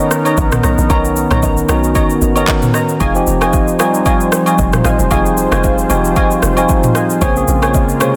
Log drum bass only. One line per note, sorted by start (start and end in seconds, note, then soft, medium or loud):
0.38 0.60 A#1 medium
0.64 0.76 B1 medium
0.78 0.88 A#1 medium
0.90 1.25 B1 loud
1.31 1.64 B1 loud
1.69 2.04 B1 loud
2.22 2.44 G#1 medium
3.01 3.23 F1 loud
3.27 3.72 F1 loud
4.59 4.81 F1 loud
4.85 4.97 G#1 medium
4.99 5.09 F1 medium
5.11 5.46 F1 loud
5.52 5.85 F1 loud
5.90 6.25 F1 loud
6.43 6.65 F1 medium
7.22 7.44 A#1 loud
7.48 7.93 A#1 loud